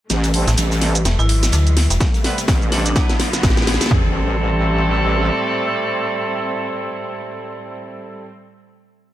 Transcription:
0.10 wobble bass A1, string section C3 G3 A3, snare, closed hi-hat, ride, riser, shaker
0.23 snare, closed hi-hat, shaker
0.34 horn section G3 A3 C4 E4 A4, open hi-hat, ride
0.47 fm bass A1, snare, closed hi-hat, shaker
0.57 wobble bass A1, snare, closed hi-hat, ride, shaker
0.71 snare, shaker
0.81 horn section G3 A3 C4 E4 A4, snare, open hi-hat, ride
0.95 closed hi-hat, shaker
1.05 fm bass E1, string section E3 F#3 G#3, snare, closed hi-hat, ride, shaker
1.19 fm bass G#1, vibraphone E4, shaker
1.29 open hi-hat, ride
1.43 snare, closed hi-hat, shaker
1.52 fm bass D2, snare, closed hi-hat, ride, shaker
1.67 closed hi-hat, ride, shaker
1.77 snare, open hi-hat, ride
1.90 fm bass E1, snare, closed hi-hat, shaker
2.01 string section C3 G3 A3, kick, snare, closed hi-hat, ride, shaker
2.14 snare, closed hi-hat, shaker
2.24 horn section G3 B3 C4 E4 B4, snare, open hi-hat, ride
2.38 snare, closed hi-hat, shaker
2.48 wobble bass A1, kick, snare, open hi-hat, ride, shaker
2.62 shaker
2.72 horn section G3 A3 C4 E4 A4, vibraphone D4, snare, open hi-hat, ride
2.86 vibraphone D4, closed hi-hat, shaker
2.96 string section D3 F#3 B3, horn section F#3 B3 D4 B4, kick, snare, closed hi-hat, ride, shaker
3.09 snare, closed hi-hat, shaker
3.19 snare, open hi-hat, ride
3.33 snare, closed hi-hat, ride, shaker
3.43 fm bass A1, kick, snare, closed hi-hat, ride, shaker
3.50 snare
3.57 snare, closed hi-hat, shaker
3.62 snare
3.67 snare, open hi-hat, ride
3.74 snare
3.81 snare, closed hi-hat, shaker
3.86 snare
3.91 wobble bass A1, string section A2 G3 C4, horn section G3 A3 C4 E4 A4, kick, floor tom

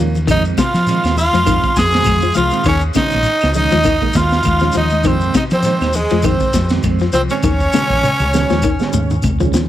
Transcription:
Already playing: clean electric guitar F3, trombone section A#3
0.00 fingered electric bass D#2
0.15 low conga, shekere
0.27 fingered electric bass F2, reed electric piano A#2 D#3 G#3 C4, clean electric guitar D#3, tenor saxophone D#4, alto saxophone D#5, kick, ride bell, high conga, claves, shekere
0.45 shekere
0.58 clean electric guitar C3, tenor saxophone F4, alto saxophone F5, kick, snare, ride bell, high conga, claves, shekere
0.74 fingered electric bass F3, snare, ride bell, shekere
0.87 reed electric piano A#2 D#3 G#3 C4, ride bell, high conga, shekere
1.04 fingered electric bass D#2, snare, claves, shekere
1.17 tenor saxophone F4, alto saxophone F5, open hi-hat, low conga, shekere
1.33 fingered electric bass F2, clean electric guitar F3, ride bell, high conga, shekere
1.46 reed electric piano A#2 D#3 G#3 C4, clean electric guitar D#3, kick, ride bell, claves, shekere
1.63 kick, shekere
1.76 fingered electric bass F2, tenor saxophone G#4, alto saxophone G#5, kick, snare, ride bell, high conga, shekere
1.92 reed electric piano A#2 D#3 G#3 C4, snare, ride bell, shekere
2.04 fingered electric bass F2, kick, ride bell, high conga, claves, shekere
2.21 clean electric guitar F3, shekere
2.34 fingered electric bass C2, clean electric guitar F3, tenor saxophone F4, alto saxophone F5, ride bell, high conga, low conga, shekere
2.51 reed electric piano A#2 D#3 G#3 C4, ride bell, shekere
2.64 fingered electric bass D#2, clean electric guitar D#3, alto saxophone C#5, kick, ride bell, high conga, claves, shekere
2.69 tenor saxophone C#4
2.80 shekere
2.94 reed electric piano A#2 D#3 G#3 C#4, clean electric guitar C#3, tenor saxophone D#4, alto saxophone D#5, muted fingered electric bass stroke, kick, snare, ride bell, high conga, claves, shekere
3.11 snare, ride bell, shekere
3.15 fingered electric bass A#1
3.23 ride bell, high conga, shekere
3.40 fingered electric bass C#2, snare, claves, shekere
3.54 reed electric piano A#2 D#3 G#3 C#4, tenor saxophone D#4, alto saxophone D#5, open hi-hat, low conga, shekere
3.71 fingered electric bass D#2, clean electric guitar F3, ride bell, high conga, shekere
3.84 clean electric guitar D#3, kick, snare, ride bell, high conga, claves, shekere
4.01 reed electric piano A#2 D#3 G#3 A#3, kick, shekere
4.13 fingered electric bass D#2, tenor saxophone F4, alto saxophone F5, kick, snare, ride bell, high conga, shekere
4.30 snare, shekere
4.43 fingered electric bass D#2, kick, ride bell, high conga, claves, shekere
4.60 reed electric piano A#2 D#3 G#3 C#4, clean electric guitar F3, snare, shekere
4.72 clean electric guitar F3, ride bell, low conga, shekere
4.76 fingered electric bass D#2, tenor saxophone D#4, alto saxophone D#5
4.90 high conga, shekere
5.03 fingered electric bass F2, reed electric piano A#2 D#3 G#3 C4, clean electric guitar D#3, tenor saxophone C4, alto saxophone C5, kick, ride bell, high conga, claves, shekere
5.21 shekere
5.34 clean electric guitar C3, tenor saxophone D#4, alto saxophone D#5, kick, snare, ride bell, high conga, claves, shekere
5.50 fingered electric bass F3, tenor saxophone C4, alto saxophone C5, snare, ride bell, low conga, shekere
5.63 reed electric piano A#2 D#3 G#3 D#4, snare, ride bell, high conga, shekere
5.80 fingered electric bass D#2, snare, claves, shekere
5.93 tenor saxophone G#3, alto saxophone G#4, open hi-hat, low conga, shekere
6.10 fingered electric bass F2, clean electric guitar F3, ride bell, high conga, shekere
6.23 reed electric piano A#2 D#3 G#3 C4, clean electric guitar D#3, tenor saxophone C4, alto saxophone C5, kick, ride bell, high conga, claves, shekere
6.40 kick, shekere
6.53 fingered electric bass F2, kick, snare, ride bell, high conga, shekere
6.69 reed electric piano A#2 D#3 G#3 C4, snare, ride bell, shekere
6.83 fingered electric bass F2, kick, ride bell, high conga, claves, shekere
6.99 clean electric guitar F3, snare, shekere
7.12 fingered electric bass C2, clean electric guitar F3, tenor saxophone C4, alto saxophone C5, ride bell, low conga, shekere
7.29 reed electric piano A#2 D#3 G#3 C4, tenor saxophone C#4, alto saxophone C#5, ride bell, shekere
7.43 fingered electric bass D#2, clean electric guitar D#3, kick, high tom, high conga, claves, shekere
7.60 kick, shekere
7.73 reed electric piano A#2 D#3 G#3 C#4, clean electric guitar C#3, muted fingered electric bass stroke, snare, high conga, claves, shekere
7.90 fingered electric bass A#1, kick, low conga, shekere
8.03 muted fingered electric bass stroke, mid tom, high conga, shekere
8.19 fingered electric bass C#2, mid tom, claves, shekere
8.33 reed electric piano A#2 D#3 G#3 C#4, snare, low conga, shekere
8.50 fingered electric bass D#2, clean electric guitar F3, snare, high conga, shekere
8.62 clean electric guitar D#3, kick, high conga, claves, shekere
8.79 reed electric piano A#2 D#3 G#3 C#4, snare, shekere
8.93 fingered electric bass D#2, mid tom, high conga, shekere
9.10 mid tom, shekere
9.23 fingered electric bass C2, kick, floor tom, high conga, claves, shekere
9.40 fingered electric bass C#2, reed electric piano A#2 D#3 G#3 C#4, clean electric guitar F3, floor tom, shekere
9.54 fingered electric bass D#2, clean electric guitar F3, snare, low conga, shekere

